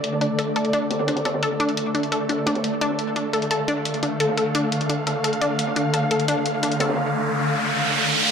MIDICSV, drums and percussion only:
0, 0, Header, 1, 2, 480
1, 0, Start_track
1, 0, Key_signature, -1, "minor"
1, 0, Tempo, 346821
1, 55, Time_signature, 4, 2, 24, 8
1, 11507, End_track
2, 0, Start_track
2, 0, Title_t, "Drums"
2, 54, Note_on_c, 9, 42, 85
2, 63, Note_on_c, 9, 51, 81
2, 179, Note_on_c, 9, 38, 38
2, 192, Note_off_c, 9, 42, 0
2, 201, Note_off_c, 9, 51, 0
2, 292, Note_on_c, 9, 51, 70
2, 294, Note_on_c, 9, 42, 64
2, 318, Note_off_c, 9, 38, 0
2, 430, Note_off_c, 9, 51, 0
2, 432, Note_off_c, 9, 42, 0
2, 530, Note_on_c, 9, 51, 91
2, 535, Note_on_c, 9, 42, 85
2, 668, Note_off_c, 9, 51, 0
2, 673, Note_off_c, 9, 42, 0
2, 772, Note_on_c, 9, 51, 68
2, 775, Note_on_c, 9, 42, 64
2, 895, Note_off_c, 9, 42, 0
2, 895, Note_on_c, 9, 42, 35
2, 911, Note_off_c, 9, 51, 0
2, 1014, Note_off_c, 9, 42, 0
2, 1014, Note_on_c, 9, 42, 89
2, 1014, Note_on_c, 9, 51, 82
2, 1152, Note_off_c, 9, 51, 0
2, 1153, Note_off_c, 9, 42, 0
2, 1251, Note_on_c, 9, 38, 93
2, 1254, Note_on_c, 9, 42, 65
2, 1255, Note_on_c, 9, 51, 74
2, 1366, Note_off_c, 9, 51, 0
2, 1366, Note_on_c, 9, 51, 80
2, 1376, Note_off_c, 9, 38, 0
2, 1376, Note_on_c, 9, 38, 90
2, 1393, Note_off_c, 9, 42, 0
2, 1479, Note_off_c, 9, 38, 0
2, 1479, Note_on_c, 9, 38, 106
2, 1494, Note_on_c, 9, 42, 89
2, 1505, Note_off_c, 9, 51, 0
2, 1606, Note_off_c, 9, 38, 0
2, 1606, Note_on_c, 9, 38, 98
2, 1615, Note_off_c, 9, 42, 0
2, 1615, Note_on_c, 9, 42, 35
2, 1619, Note_on_c, 9, 51, 79
2, 1732, Note_off_c, 9, 38, 0
2, 1732, Note_on_c, 9, 38, 105
2, 1734, Note_off_c, 9, 42, 0
2, 1734, Note_on_c, 9, 42, 62
2, 1739, Note_off_c, 9, 51, 0
2, 1739, Note_on_c, 9, 51, 81
2, 1857, Note_off_c, 9, 38, 0
2, 1857, Note_on_c, 9, 38, 94
2, 1862, Note_off_c, 9, 51, 0
2, 1862, Note_on_c, 9, 51, 74
2, 1873, Note_off_c, 9, 42, 0
2, 1974, Note_on_c, 9, 42, 86
2, 1983, Note_off_c, 9, 51, 0
2, 1983, Note_on_c, 9, 51, 84
2, 1996, Note_off_c, 9, 38, 0
2, 2095, Note_on_c, 9, 38, 36
2, 2113, Note_off_c, 9, 42, 0
2, 2122, Note_off_c, 9, 51, 0
2, 2210, Note_on_c, 9, 51, 62
2, 2214, Note_on_c, 9, 42, 63
2, 2233, Note_off_c, 9, 38, 0
2, 2334, Note_off_c, 9, 42, 0
2, 2334, Note_off_c, 9, 51, 0
2, 2334, Note_on_c, 9, 42, 34
2, 2334, Note_on_c, 9, 51, 39
2, 2445, Note_off_c, 9, 51, 0
2, 2445, Note_on_c, 9, 51, 85
2, 2454, Note_off_c, 9, 42, 0
2, 2454, Note_on_c, 9, 42, 85
2, 2583, Note_off_c, 9, 51, 0
2, 2593, Note_off_c, 9, 42, 0
2, 2688, Note_on_c, 9, 51, 70
2, 2695, Note_on_c, 9, 42, 61
2, 2814, Note_off_c, 9, 42, 0
2, 2814, Note_on_c, 9, 42, 34
2, 2826, Note_off_c, 9, 51, 0
2, 2934, Note_off_c, 9, 42, 0
2, 2934, Note_on_c, 9, 42, 85
2, 2935, Note_on_c, 9, 51, 65
2, 3053, Note_off_c, 9, 51, 0
2, 3053, Note_on_c, 9, 51, 39
2, 3073, Note_off_c, 9, 42, 0
2, 3169, Note_off_c, 9, 51, 0
2, 3169, Note_on_c, 9, 51, 67
2, 3172, Note_on_c, 9, 38, 43
2, 3174, Note_on_c, 9, 42, 61
2, 3308, Note_off_c, 9, 51, 0
2, 3311, Note_off_c, 9, 38, 0
2, 3313, Note_off_c, 9, 42, 0
2, 3409, Note_on_c, 9, 38, 95
2, 3415, Note_on_c, 9, 42, 85
2, 3418, Note_on_c, 9, 51, 75
2, 3530, Note_off_c, 9, 51, 0
2, 3530, Note_on_c, 9, 51, 73
2, 3531, Note_off_c, 9, 38, 0
2, 3531, Note_on_c, 9, 38, 97
2, 3535, Note_off_c, 9, 42, 0
2, 3535, Note_on_c, 9, 42, 34
2, 3649, Note_off_c, 9, 51, 0
2, 3649, Note_on_c, 9, 51, 83
2, 3655, Note_off_c, 9, 42, 0
2, 3655, Note_on_c, 9, 42, 61
2, 3670, Note_off_c, 9, 38, 0
2, 3788, Note_off_c, 9, 51, 0
2, 3793, Note_off_c, 9, 42, 0
2, 3895, Note_on_c, 9, 42, 84
2, 4016, Note_on_c, 9, 38, 43
2, 4033, Note_off_c, 9, 42, 0
2, 4126, Note_on_c, 9, 51, 64
2, 4135, Note_on_c, 9, 42, 60
2, 4154, Note_off_c, 9, 38, 0
2, 4264, Note_off_c, 9, 51, 0
2, 4273, Note_off_c, 9, 42, 0
2, 4375, Note_on_c, 9, 42, 87
2, 4380, Note_on_c, 9, 51, 88
2, 4513, Note_off_c, 9, 42, 0
2, 4519, Note_off_c, 9, 51, 0
2, 4610, Note_on_c, 9, 51, 64
2, 4615, Note_on_c, 9, 42, 60
2, 4735, Note_off_c, 9, 42, 0
2, 4735, Note_on_c, 9, 42, 35
2, 4749, Note_off_c, 9, 51, 0
2, 4855, Note_off_c, 9, 42, 0
2, 4855, Note_on_c, 9, 42, 86
2, 4862, Note_on_c, 9, 51, 81
2, 4993, Note_off_c, 9, 42, 0
2, 5000, Note_off_c, 9, 51, 0
2, 5090, Note_on_c, 9, 51, 69
2, 5095, Note_on_c, 9, 42, 62
2, 5212, Note_off_c, 9, 51, 0
2, 5212, Note_on_c, 9, 51, 41
2, 5233, Note_off_c, 9, 42, 0
2, 5334, Note_on_c, 9, 42, 90
2, 5335, Note_off_c, 9, 51, 0
2, 5335, Note_on_c, 9, 51, 78
2, 5454, Note_off_c, 9, 42, 0
2, 5454, Note_on_c, 9, 42, 35
2, 5473, Note_off_c, 9, 51, 0
2, 5567, Note_on_c, 9, 51, 64
2, 5574, Note_off_c, 9, 42, 0
2, 5574, Note_on_c, 9, 42, 61
2, 5706, Note_off_c, 9, 51, 0
2, 5713, Note_off_c, 9, 42, 0
2, 5815, Note_on_c, 9, 42, 89
2, 5826, Note_on_c, 9, 51, 83
2, 5930, Note_on_c, 9, 38, 38
2, 5953, Note_off_c, 9, 42, 0
2, 5964, Note_off_c, 9, 51, 0
2, 6053, Note_on_c, 9, 51, 65
2, 6055, Note_on_c, 9, 42, 64
2, 6069, Note_off_c, 9, 38, 0
2, 6183, Note_off_c, 9, 51, 0
2, 6183, Note_on_c, 9, 51, 38
2, 6194, Note_off_c, 9, 42, 0
2, 6295, Note_on_c, 9, 42, 92
2, 6296, Note_off_c, 9, 51, 0
2, 6296, Note_on_c, 9, 51, 86
2, 6433, Note_off_c, 9, 42, 0
2, 6435, Note_off_c, 9, 51, 0
2, 6535, Note_on_c, 9, 42, 64
2, 6543, Note_on_c, 9, 51, 66
2, 6655, Note_off_c, 9, 42, 0
2, 6655, Note_on_c, 9, 42, 37
2, 6682, Note_off_c, 9, 51, 0
2, 6768, Note_on_c, 9, 46, 80
2, 6775, Note_off_c, 9, 42, 0
2, 6775, Note_on_c, 9, 42, 92
2, 6906, Note_off_c, 9, 46, 0
2, 6914, Note_off_c, 9, 42, 0
2, 7011, Note_on_c, 9, 51, 66
2, 7015, Note_on_c, 9, 42, 66
2, 7018, Note_on_c, 9, 38, 43
2, 7149, Note_off_c, 9, 51, 0
2, 7154, Note_off_c, 9, 42, 0
2, 7156, Note_off_c, 9, 38, 0
2, 7251, Note_on_c, 9, 51, 79
2, 7255, Note_on_c, 9, 42, 91
2, 7376, Note_off_c, 9, 42, 0
2, 7376, Note_on_c, 9, 42, 35
2, 7389, Note_off_c, 9, 51, 0
2, 7490, Note_on_c, 9, 51, 67
2, 7495, Note_off_c, 9, 42, 0
2, 7495, Note_on_c, 9, 42, 63
2, 7628, Note_off_c, 9, 51, 0
2, 7633, Note_off_c, 9, 42, 0
2, 7728, Note_on_c, 9, 51, 93
2, 7735, Note_on_c, 9, 42, 92
2, 7848, Note_on_c, 9, 38, 43
2, 7866, Note_off_c, 9, 51, 0
2, 7874, Note_off_c, 9, 42, 0
2, 7965, Note_on_c, 9, 51, 62
2, 7975, Note_on_c, 9, 42, 68
2, 7987, Note_off_c, 9, 38, 0
2, 8103, Note_off_c, 9, 51, 0
2, 8114, Note_off_c, 9, 42, 0
2, 8206, Note_on_c, 9, 51, 90
2, 8216, Note_on_c, 9, 42, 93
2, 8344, Note_off_c, 9, 51, 0
2, 8354, Note_off_c, 9, 42, 0
2, 8452, Note_on_c, 9, 51, 60
2, 8456, Note_on_c, 9, 42, 66
2, 8575, Note_off_c, 9, 42, 0
2, 8575, Note_on_c, 9, 42, 38
2, 8591, Note_off_c, 9, 51, 0
2, 8695, Note_off_c, 9, 42, 0
2, 8695, Note_on_c, 9, 42, 93
2, 8697, Note_on_c, 9, 51, 89
2, 8833, Note_off_c, 9, 42, 0
2, 8835, Note_off_c, 9, 51, 0
2, 8936, Note_on_c, 9, 42, 67
2, 8943, Note_on_c, 9, 51, 66
2, 9059, Note_off_c, 9, 51, 0
2, 9059, Note_on_c, 9, 51, 45
2, 9074, Note_off_c, 9, 42, 0
2, 9176, Note_on_c, 9, 42, 93
2, 9186, Note_off_c, 9, 51, 0
2, 9186, Note_on_c, 9, 51, 90
2, 9295, Note_off_c, 9, 42, 0
2, 9295, Note_on_c, 9, 42, 36
2, 9325, Note_off_c, 9, 51, 0
2, 9410, Note_on_c, 9, 38, 96
2, 9415, Note_off_c, 9, 42, 0
2, 9415, Note_on_c, 9, 42, 67
2, 9417, Note_on_c, 9, 51, 84
2, 9527, Note_off_c, 9, 38, 0
2, 9527, Note_on_c, 9, 38, 90
2, 9548, Note_off_c, 9, 51, 0
2, 9548, Note_on_c, 9, 51, 70
2, 9553, Note_off_c, 9, 42, 0
2, 9595, Note_off_c, 9, 51, 0
2, 9595, Note_on_c, 9, 51, 67
2, 9599, Note_off_c, 9, 38, 0
2, 9599, Note_on_c, 9, 38, 81
2, 9733, Note_off_c, 9, 51, 0
2, 9738, Note_off_c, 9, 38, 0
2, 11507, End_track
0, 0, End_of_file